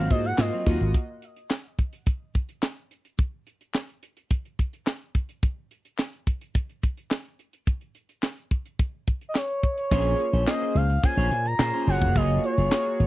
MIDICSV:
0, 0, Header, 1, 7, 480
1, 0, Start_track
1, 0, Key_signature, -5, "minor"
1, 0, Tempo, 560748
1, 807, Time_signature, 4, 2, 24, 8
1, 11187, End_track
2, 0, Start_track
2, 0, Title_t, "Analog synth lead"
2, 0, Program_c, 0, 81
2, 0, Note_on_c, 0, 77, 99
2, 92, Note_on_c, 0, 75, 90
2, 105, Note_off_c, 0, 77, 0
2, 210, Note_off_c, 0, 75, 0
2, 219, Note_on_c, 0, 78, 92
2, 340, Note_on_c, 0, 75, 80
2, 353, Note_off_c, 0, 78, 0
2, 574, Note_off_c, 0, 75, 0
2, 7950, Note_on_c, 0, 75, 58
2, 8015, Note_on_c, 0, 73, 83
2, 8027, Note_off_c, 0, 75, 0
2, 8367, Note_off_c, 0, 73, 0
2, 8372, Note_on_c, 0, 73, 90
2, 8936, Note_off_c, 0, 73, 0
2, 8975, Note_on_c, 0, 75, 97
2, 9213, Note_on_c, 0, 77, 97
2, 9226, Note_off_c, 0, 75, 0
2, 9448, Note_off_c, 0, 77, 0
2, 9453, Note_on_c, 0, 80, 113
2, 9813, Note_on_c, 0, 82, 110
2, 9826, Note_off_c, 0, 80, 0
2, 10170, Note_off_c, 0, 82, 0
2, 10176, Note_on_c, 0, 78, 107
2, 10412, Note_on_c, 0, 75, 115
2, 10425, Note_off_c, 0, 78, 0
2, 10650, Note_off_c, 0, 75, 0
2, 10657, Note_on_c, 0, 73, 92
2, 11187, Note_off_c, 0, 73, 0
2, 11187, End_track
3, 0, Start_track
3, 0, Title_t, "Analog polysynth"
3, 0, Program_c, 1, 90
3, 87, Note_on_c, 1, 58, 80
3, 89, Note_on_c, 1, 65, 67
3, 91, Note_on_c, 1, 66, 68
3, 92, Note_on_c, 1, 72, 82
3, 207, Note_off_c, 1, 58, 0
3, 208, Note_off_c, 1, 65, 0
3, 211, Note_off_c, 1, 66, 0
3, 212, Note_off_c, 1, 72, 0
3, 326, Note_on_c, 1, 58, 81
3, 329, Note_on_c, 1, 65, 76
3, 330, Note_on_c, 1, 66, 75
3, 333, Note_on_c, 1, 72, 91
3, 446, Note_off_c, 1, 58, 0
3, 448, Note_off_c, 1, 65, 0
3, 450, Note_off_c, 1, 66, 0
3, 453, Note_off_c, 1, 72, 0
3, 564, Note_on_c, 1, 58, 83
3, 568, Note_on_c, 1, 65, 78
3, 569, Note_on_c, 1, 66, 75
3, 573, Note_on_c, 1, 75, 97
3, 781, Note_off_c, 1, 58, 0
3, 783, Note_off_c, 1, 65, 0
3, 784, Note_off_c, 1, 66, 0
3, 786, Note_off_c, 1, 75, 0
3, 8485, Note_on_c, 1, 58, 86
3, 8487, Note_on_c, 1, 61, 78
3, 8489, Note_on_c, 1, 65, 74
3, 8489, Note_on_c, 1, 68, 80
3, 8493, Note_on_c, 1, 73, 92
3, 8774, Note_off_c, 1, 58, 0
3, 8775, Note_off_c, 1, 61, 0
3, 8775, Note_off_c, 1, 65, 0
3, 8776, Note_off_c, 1, 68, 0
3, 8778, Note_off_c, 1, 73, 0
3, 8966, Note_on_c, 1, 58, 77
3, 8967, Note_on_c, 1, 61, 72
3, 8969, Note_on_c, 1, 65, 71
3, 8971, Note_on_c, 1, 68, 70
3, 8973, Note_on_c, 1, 72, 85
3, 9254, Note_off_c, 1, 58, 0
3, 9255, Note_off_c, 1, 61, 0
3, 9256, Note_off_c, 1, 65, 0
3, 9257, Note_off_c, 1, 68, 0
3, 9257, Note_off_c, 1, 72, 0
3, 9446, Note_on_c, 1, 58, 77
3, 9449, Note_on_c, 1, 61, 70
3, 9449, Note_on_c, 1, 65, 72
3, 9450, Note_on_c, 1, 68, 72
3, 9453, Note_on_c, 1, 72, 85
3, 9734, Note_off_c, 1, 58, 0
3, 9735, Note_off_c, 1, 61, 0
3, 9736, Note_off_c, 1, 65, 0
3, 9736, Note_off_c, 1, 68, 0
3, 9737, Note_off_c, 1, 72, 0
3, 9923, Note_on_c, 1, 58, 82
3, 9926, Note_on_c, 1, 61, 75
3, 9928, Note_on_c, 1, 65, 77
3, 9930, Note_on_c, 1, 68, 76
3, 9931, Note_on_c, 1, 72, 90
3, 10155, Note_off_c, 1, 58, 0
3, 10157, Note_off_c, 1, 65, 0
3, 10160, Note_off_c, 1, 68, 0
3, 10165, Note_on_c, 1, 58, 79
3, 10167, Note_off_c, 1, 61, 0
3, 10167, Note_on_c, 1, 65, 69
3, 10169, Note_off_c, 1, 72, 0
3, 10170, Note_on_c, 1, 66, 73
3, 10170, Note_on_c, 1, 68, 69
3, 10172, Note_on_c, 1, 73, 89
3, 10743, Note_off_c, 1, 58, 0
3, 10743, Note_off_c, 1, 65, 0
3, 10745, Note_off_c, 1, 66, 0
3, 10745, Note_off_c, 1, 68, 0
3, 10746, Note_off_c, 1, 73, 0
3, 10889, Note_on_c, 1, 58, 76
3, 10889, Note_on_c, 1, 65, 73
3, 10892, Note_on_c, 1, 66, 67
3, 10893, Note_on_c, 1, 68, 69
3, 10893, Note_on_c, 1, 73, 84
3, 11175, Note_off_c, 1, 58, 0
3, 11176, Note_off_c, 1, 65, 0
3, 11177, Note_off_c, 1, 66, 0
3, 11178, Note_off_c, 1, 68, 0
3, 11178, Note_off_c, 1, 73, 0
3, 11187, End_track
4, 0, Start_track
4, 0, Title_t, "Clean electric guitar"
4, 0, Program_c, 2, 27
4, 0, Note_on_c, 2, 60, 96
4, 0, Note_on_c, 2, 66, 102
4, 87, Note_off_c, 2, 60, 0
4, 96, Note_off_c, 2, 66, 0
4, 451, Note_on_c, 2, 65, 75
4, 458, Note_on_c, 2, 60, 73
4, 459, Note_on_c, 2, 54, 66
4, 562, Note_off_c, 2, 54, 0
4, 568, Note_off_c, 2, 60, 0
4, 572, Note_off_c, 2, 65, 0
4, 572, Note_on_c, 2, 54, 65
4, 578, Note_on_c, 2, 60, 66
4, 582, Note_on_c, 2, 65, 73
4, 685, Note_off_c, 2, 65, 0
4, 691, Note_off_c, 2, 60, 0
4, 715, Note_off_c, 2, 54, 0
4, 8483, Note_on_c, 2, 61, 86
4, 8489, Note_on_c, 2, 68, 90
4, 8494, Note_on_c, 2, 72, 103
4, 8706, Note_off_c, 2, 61, 0
4, 8709, Note_off_c, 2, 68, 0
4, 8712, Note_off_c, 2, 72, 0
4, 8845, Note_on_c, 2, 72, 59
4, 8851, Note_on_c, 2, 68, 52
4, 8856, Note_on_c, 2, 61, 55
4, 8957, Note_off_c, 2, 61, 0
4, 8961, Note_off_c, 2, 68, 0
4, 8964, Note_off_c, 2, 72, 0
4, 9567, Note_on_c, 2, 73, 93
4, 9570, Note_on_c, 2, 68, 85
4, 9574, Note_on_c, 2, 61, 69
4, 9681, Note_off_c, 2, 61, 0
4, 9685, Note_off_c, 2, 68, 0
4, 9694, Note_off_c, 2, 73, 0
4, 10048, Note_on_c, 2, 72, 81
4, 10053, Note_on_c, 2, 68, 75
4, 10058, Note_on_c, 2, 61, 67
4, 10170, Note_off_c, 2, 68, 0
4, 10170, Note_on_c, 2, 58, 61
4, 10172, Note_off_c, 2, 61, 0
4, 10176, Note_on_c, 2, 65, 71
4, 10180, Note_on_c, 2, 68, 60
4, 10233, Note_off_c, 2, 72, 0
4, 10283, Note_off_c, 2, 68, 0
4, 10290, Note_off_c, 2, 65, 0
4, 10314, Note_off_c, 2, 58, 0
4, 10414, Note_on_c, 2, 58, 83
4, 10419, Note_on_c, 2, 65, 102
4, 10423, Note_on_c, 2, 68, 99
4, 10632, Note_off_c, 2, 58, 0
4, 10634, Note_off_c, 2, 65, 0
4, 10636, Note_off_c, 2, 68, 0
4, 10770, Note_on_c, 2, 68, 65
4, 10775, Note_on_c, 2, 65, 62
4, 10777, Note_on_c, 2, 58, 49
4, 10882, Note_off_c, 2, 58, 0
4, 10885, Note_off_c, 2, 65, 0
4, 10887, Note_off_c, 2, 68, 0
4, 11187, End_track
5, 0, Start_track
5, 0, Title_t, "Slap bass"
5, 0, Program_c, 3, 36
5, 89, Note_on_c, 3, 44, 113
5, 274, Note_off_c, 3, 44, 0
5, 331, Note_on_c, 3, 44, 104
5, 422, Note_off_c, 3, 44, 0
5, 568, Note_on_c, 3, 39, 98
5, 660, Note_off_c, 3, 39, 0
5, 692, Note_on_c, 3, 32, 90
5, 783, Note_off_c, 3, 32, 0
5, 8487, Note_on_c, 3, 34, 107
5, 8672, Note_off_c, 3, 34, 0
5, 8844, Note_on_c, 3, 34, 95
5, 8938, Note_off_c, 3, 34, 0
5, 9203, Note_on_c, 3, 37, 90
5, 9390, Note_off_c, 3, 37, 0
5, 9563, Note_on_c, 3, 34, 110
5, 9657, Note_off_c, 3, 34, 0
5, 9685, Note_on_c, 3, 46, 101
5, 9871, Note_off_c, 3, 46, 0
5, 9924, Note_on_c, 3, 46, 113
5, 10018, Note_off_c, 3, 46, 0
5, 10163, Note_on_c, 3, 30, 105
5, 10257, Note_off_c, 3, 30, 0
5, 10285, Note_on_c, 3, 29, 98
5, 10378, Note_off_c, 3, 29, 0
5, 10406, Note_on_c, 3, 30, 109
5, 10591, Note_off_c, 3, 30, 0
5, 10766, Note_on_c, 3, 30, 105
5, 10859, Note_off_c, 3, 30, 0
5, 11125, Note_on_c, 3, 32, 89
5, 11187, Note_off_c, 3, 32, 0
5, 11187, End_track
6, 0, Start_track
6, 0, Title_t, "Muted clean electric guitar strokes"
6, 212, Note_on_c, 9, 29, 49
6, 298, Note_off_c, 9, 29, 0
6, 333, Note_on_c, 9, 29, 45
6, 418, Note_off_c, 9, 29, 0
6, 695, Note_on_c, 9, 29, 39
6, 781, Note_off_c, 9, 29, 0
6, 8727, Note_on_c, 9, 29, 47
6, 8813, Note_off_c, 9, 29, 0
6, 8968, Note_on_c, 9, 29, 48
6, 9053, Note_off_c, 9, 29, 0
6, 9087, Note_on_c, 9, 29, 51
6, 9173, Note_off_c, 9, 29, 0
6, 9328, Note_on_c, 9, 29, 45
6, 9414, Note_off_c, 9, 29, 0
6, 9447, Note_on_c, 9, 29, 39
6, 9532, Note_off_c, 9, 29, 0
6, 9691, Note_on_c, 9, 29, 52
6, 9777, Note_off_c, 9, 29, 0
6, 9807, Note_on_c, 9, 29, 62
6, 9893, Note_off_c, 9, 29, 0
6, 9929, Note_on_c, 9, 29, 35
6, 10015, Note_off_c, 9, 29, 0
6, 10293, Note_on_c, 9, 29, 43
6, 10379, Note_off_c, 9, 29, 0
6, 10651, Note_on_c, 9, 29, 36
6, 10737, Note_off_c, 9, 29, 0
6, 10892, Note_on_c, 9, 29, 47
6, 10978, Note_off_c, 9, 29, 0
6, 11014, Note_on_c, 9, 29, 53
6, 11099, Note_off_c, 9, 29, 0
6, 11187, End_track
7, 0, Start_track
7, 0, Title_t, "Drums"
7, 87, Note_on_c, 9, 42, 75
7, 90, Note_on_c, 9, 36, 90
7, 172, Note_off_c, 9, 42, 0
7, 176, Note_off_c, 9, 36, 0
7, 209, Note_on_c, 9, 42, 52
7, 294, Note_off_c, 9, 42, 0
7, 327, Note_on_c, 9, 39, 96
7, 328, Note_on_c, 9, 38, 118
7, 331, Note_off_c, 9, 39, 0
7, 331, Note_on_c, 9, 39, 90
7, 413, Note_off_c, 9, 38, 0
7, 416, Note_off_c, 9, 39, 0
7, 452, Note_on_c, 9, 42, 37
7, 537, Note_off_c, 9, 42, 0
7, 568, Note_on_c, 9, 46, 73
7, 569, Note_on_c, 9, 36, 95
7, 654, Note_off_c, 9, 46, 0
7, 655, Note_off_c, 9, 36, 0
7, 687, Note_on_c, 9, 42, 55
7, 773, Note_off_c, 9, 42, 0
7, 805, Note_on_c, 9, 42, 74
7, 808, Note_on_c, 9, 36, 103
7, 890, Note_off_c, 9, 42, 0
7, 894, Note_off_c, 9, 36, 0
7, 1046, Note_on_c, 9, 42, 60
7, 1131, Note_off_c, 9, 42, 0
7, 1168, Note_on_c, 9, 42, 46
7, 1254, Note_off_c, 9, 42, 0
7, 1288, Note_on_c, 9, 38, 96
7, 1288, Note_on_c, 9, 39, 88
7, 1291, Note_off_c, 9, 39, 0
7, 1291, Note_on_c, 9, 39, 77
7, 1374, Note_off_c, 9, 38, 0
7, 1377, Note_off_c, 9, 39, 0
7, 1529, Note_on_c, 9, 36, 85
7, 1529, Note_on_c, 9, 42, 70
7, 1615, Note_off_c, 9, 36, 0
7, 1615, Note_off_c, 9, 42, 0
7, 1650, Note_on_c, 9, 42, 54
7, 1735, Note_off_c, 9, 42, 0
7, 1766, Note_on_c, 9, 42, 85
7, 1770, Note_on_c, 9, 36, 96
7, 1852, Note_off_c, 9, 42, 0
7, 1855, Note_off_c, 9, 36, 0
7, 2010, Note_on_c, 9, 42, 63
7, 2012, Note_on_c, 9, 36, 79
7, 2095, Note_off_c, 9, 42, 0
7, 2098, Note_off_c, 9, 36, 0
7, 2130, Note_on_c, 9, 42, 50
7, 2215, Note_off_c, 9, 42, 0
7, 2248, Note_on_c, 9, 39, 94
7, 2249, Note_on_c, 9, 38, 109
7, 2252, Note_off_c, 9, 39, 0
7, 2252, Note_on_c, 9, 39, 85
7, 2335, Note_off_c, 9, 38, 0
7, 2337, Note_off_c, 9, 39, 0
7, 2491, Note_on_c, 9, 42, 66
7, 2576, Note_off_c, 9, 42, 0
7, 2611, Note_on_c, 9, 42, 50
7, 2696, Note_off_c, 9, 42, 0
7, 2728, Note_on_c, 9, 42, 77
7, 2729, Note_on_c, 9, 36, 104
7, 2814, Note_off_c, 9, 36, 0
7, 2814, Note_off_c, 9, 42, 0
7, 2968, Note_on_c, 9, 42, 57
7, 3053, Note_off_c, 9, 42, 0
7, 3089, Note_on_c, 9, 42, 45
7, 3174, Note_off_c, 9, 42, 0
7, 3205, Note_on_c, 9, 39, 89
7, 3208, Note_on_c, 9, 38, 99
7, 3210, Note_off_c, 9, 39, 0
7, 3210, Note_on_c, 9, 39, 82
7, 3293, Note_off_c, 9, 38, 0
7, 3296, Note_off_c, 9, 39, 0
7, 3329, Note_on_c, 9, 42, 34
7, 3414, Note_off_c, 9, 42, 0
7, 3447, Note_on_c, 9, 42, 70
7, 3533, Note_off_c, 9, 42, 0
7, 3568, Note_on_c, 9, 42, 53
7, 3653, Note_off_c, 9, 42, 0
7, 3685, Note_on_c, 9, 42, 88
7, 3687, Note_on_c, 9, 36, 98
7, 3770, Note_off_c, 9, 42, 0
7, 3773, Note_off_c, 9, 36, 0
7, 3812, Note_on_c, 9, 42, 33
7, 3898, Note_off_c, 9, 42, 0
7, 3929, Note_on_c, 9, 42, 72
7, 3930, Note_on_c, 9, 36, 77
7, 4015, Note_off_c, 9, 42, 0
7, 4016, Note_off_c, 9, 36, 0
7, 4051, Note_on_c, 9, 42, 51
7, 4137, Note_off_c, 9, 42, 0
7, 4168, Note_on_c, 9, 38, 105
7, 4168, Note_on_c, 9, 39, 98
7, 4171, Note_off_c, 9, 39, 0
7, 4171, Note_on_c, 9, 39, 83
7, 4254, Note_off_c, 9, 38, 0
7, 4257, Note_off_c, 9, 39, 0
7, 4407, Note_on_c, 9, 36, 89
7, 4407, Note_on_c, 9, 42, 74
7, 4493, Note_off_c, 9, 36, 0
7, 4493, Note_off_c, 9, 42, 0
7, 4527, Note_on_c, 9, 42, 52
7, 4613, Note_off_c, 9, 42, 0
7, 4647, Note_on_c, 9, 36, 100
7, 4648, Note_on_c, 9, 42, 75
7, 4733, Note_off_c, 9, 36, 0
7, 4734, Note_off_c, 9, 42, 0
7, 4888, Note_on_c, 9, 42, 63
7, 4973, Note_off_c, 9, 42, 0
7, 5008, Note_on_c, 9, 42, 43
7, 5094, Note_off_c, 9, 42, 0
7, 5123, Note_on_c, 9, 39, 84
7, 5128, Note_on_c, 9, 38, 96
7, 5131, Note_off_c, 9, 39, 0
7, 5131, Note_on_c, 9, 39, 76
7, 5214, Note_off_c, 9, 38, 0
7, 5217, Note_off_c, 9, 39, 0
7, 5248, Note_on_c, 9, 42, 33
7, 5334, Note_off_c, 9, 42, 0
7, 5367, Note_on_c, 9, 36, 87
7, 5368, Note_on_c, 9, 42, 76
7, 5453, Note_off_c, 9, 36, 0
7, 5453, Note_off_c, 9, 42, 0
7, 5491, Note_on_c, 9, 42, 54
7, 5576, Note_off_c, 9, 42, 0
7, 5606, Note_on_c, 9, 42, 89
7, 5607, Note_on_c, 9, 36, 100
7, 5691, Note_off_c, 9, 42, 0
7, 5693, Note_off_c, 9, 36, 0
7, 5731, Note_on_c, 9, 42, 34
7, 5816, Note_off_c, 9, 42, 0
7, 5848, Note_on_c, 9, 42, 71
7, 5850, Note_on_c, 9, 36, 82
7, 5933, Note_off_c, 9, 42, 0
7, 5936, Note_off_c, 9, 36, 0
7, 5970, Note_on_c, 9, 42, 49
7, 6055, Note_off_c, 9, 42, 0
7, 6086, Note_on_c, 9, 39, 89
7, 6088, Note_on_c, 9, 38, 106
7, 6091, Note_off_c, 9, 39, 0
7, 6091, Note_on_c, 9, 39, 83
7, 6174, Note_off_c, 9, 38, 0
7, 6177, Note_off_c, 9, 39, 0
7, 6327, Note_on_c, 9, 42, 64
7, 6413, Note_off_c, 9, 42, 0
7, 6448, Note_on_c, 9, 42, 49
7, 6534, Note_off_c, 9, 42, 0
7, 6567, Note_on_c, 9, 36, 101
7, 6567, Note_on_c, 9, 42, 77
7, 6653, Note_off_c, 9, 36, 0
7, 6653, Note_off_c, 9, 42, 0
7, 6686, Note_on_c, 9, 42, 31
7, 6771, Note_off_c, 9, 42, 0
7, 6804, Note_on_c, 9, 42, 57
7, 6889, Note_off_c, 9, 42, 0
7, 6925, Note_on_c, 9, 42, 45
7, 7011, Note_off_c, 9, 42, 0
7, 7043, Note_on_c, 9, 39, 92
7, 7045, Note_on_c, 9, 38, 97
7, 7047, Note_off_c, 9, 39, 0
7, 7047, Note_on_c, 9, 39, 77
7, 7130, Note_off_c, 9, 38, 0
7, 7133, Note_off_c, 9, 39, 0
7, 7165, Note_on_c, 9, 42, 34
7, 7251, Note_off_c, 9, 42, 0
7, 7286, Note_on_c, 9, 36, 88
7, 7286, Note_on_c, 9, 42, 73
7, 7372, Note_off_c, 9, 36, 0
7, 7372, Note_off_c, 9, 42, 0
7, 7409, Note_on_c, 9, 42, 53
7, 7495, Note_off_c, 9, 42, 0
7, 7527, Note_on_c, 9, 42, 88
7, 7528, Note_on_c, 9, 36, 98
7, 7613, Note_off_c, 9, 36, 0
7, 7613, Note_off_c, 9, 42, 0
7, 7767, Note_on_c, 9, 42, 66
7, 7770, Note_on_c, 9, 36, 81
7, 7853, Note_off_c, 9, 42, 0
7, 7855, Note_off_c, 9, 36, 0
7, 7887, Note_on_c, 9, 42, 49
7, 7973, Note_off_c, 9, 42, 0
7, 8004, Note_on_c, 9, 39, 87
7, 8007, Note_on_c, 9, 38, 97
7, 8010, Note_off_c, 9, 39, 0
7, 8010, Note_on_c, 9, 39, 81
7, 8093, Note_off_c, 9, 38, 0
7, 8095, Note_off_c, 9, 39, 0
7, 8247, Note_on_c, 9, 36, 95
7, 8247, Note_on_c, 9, 42, 69
7, 8332, Note_off_c, 9, 36, 0
7, 8333, Note_off_c, 9, 42, 0
7, 8367, Note_on_c, 9, 42, 49
7, 8453, Note_off_c, 9, 42, 0
7, 8487, Note_on_c, 9, 36, 119
7, 8487, Note_on_c, 9, 42, 87
7, 8572, Note_off_c, 9, 42, 0
7, 8573, Note_off_c, 9, 36, 0
7, 8606, Note_on_c, 9, 42, 35
7, 8692, Note_off_c, 9, 42, 0
7, 8727, Note_on_c, 9, 42, 68
7, 8813, Note_off_c, 9, 42, 0
7, 8846, Note_on_c, 9, 42, 48
7, 8932, Note_off_c, 9, 42, 0
7, 8965, Note_on_c, 9, 39, 100
7, 8967, Note_on_c, 9, 38, 111
7, 8970, Note_off_c, 9, 39, 0
7, 8970, Note_on_c, 9, 39, 86
7, 9053, Note_off_c, 9, 38, 0
7, 9056, Note_off_c, 9, 39, 0
7, 9087, Note_on_c, 9, 42, 37
7, 9172, Note_off_c, 9, 42, 0
7, 9209, Note_on_c, 9, 42, 78
7, 9294, Note_off_c, 9, 42, 0
7, 9329, Note_on_c, 9, 42, 59
7, 9414, Note_off_c, 9, 42, 0
7, 9443, Note_on_c, 9, 42, 100
7, 9446, Note_on_c, 9, 36, 117
7, 9529, Note_off_c, 9, 42, 0
7, 9532, Note_off_c, 9, 36, 0
7, 9571, Note_on_c, 9, 42, 36
7, 9656, Note_off_c, 9, 42, 0
7, 9686, Note_on_c, 9, 42, 76
7, 9772, Note_off_c, 9, 42, 0
7, 9805, Note_on_c, 9, 42, 59
7, 9891, Note_off_c, 9, 42, 0
7, 9924, Note_on_c, 9, 38, 124
7, 9926, Note_on_c, 9, 39, 94
7, 9927, Note_off_c, 9, 39, 0
7, 9927, Note_on_c, 9, 39, 110
7, 10009, Note_off_c, 9, 38, 0
7, 10013, Note_off_c, 9, 39, 0
7, 10167, Note_on_c, 9, 46, 80
7, 10252, Note_off_c, 9, 46, 0
7, 10284, Note_on_c, 9, 42, 55
7, 10286, Note_on_c, 9, 36, 104
7, 10369, Note_off_c, 9, 42, 0
7, 10371, Note_off_c, 9, 36, 0
7, 10405, Note_on_c, 9, 42, 84
7, 10407, Note_on_c, 9, 36, 122
7, 10490, Note_off_c, 9, 42, 0
7, 10492, Note_off_c, 9, 36, 0
7, 10647, Note_on_c, 9, 42, 65
7, 10732, Note_off_c, 9, 42, 0
7, 10766, Note_on_c, 9, 42, 51
7, 10851, Note_off_c, 9, 42, 0
7, 10885, Note_on_c, 9, 38, 109
7, 10888, Note_on_c, 9, 39, 100
7, 10971, Note_off_c, 9, 38, 0
7, 10974, Note_off_c, 9, 39, 0
7, 11005, Note_on_c, 9, 42, 40
7, 11091, Note_off_c, 9, 42, 0
7, 11128, Note_on_c, 9, 42, 80
7, 11187, Note_off_c, 9, 42, 0
7, 11187, End_track
0, 0, End_of_file